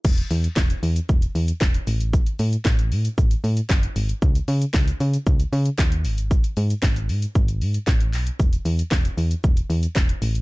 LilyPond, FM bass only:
\new Staff \with { instrumentName = "FM bass" } { \clef bass \time 4/4 \key cis \minor \tempo 4 = 115 e,,8 e,8 e,,8 e,8 e,,8 e,8 e,,8 a,,8~ | a,,8 a,8 a,,8 a,8 a,,8 a,8 fis,,8 gis,,8 | cis,8 cis8 cis,8 cis8 cis,8 cis8 dis,8 gis,,8~ | gis,,8 gis,8 gis,,8 gis,8 gis,,8 gis,8 a,,8 b,,8 |
e,,8 e,8 e,,8 e,8 e,,8 e,8 e,,8 a,,8 | }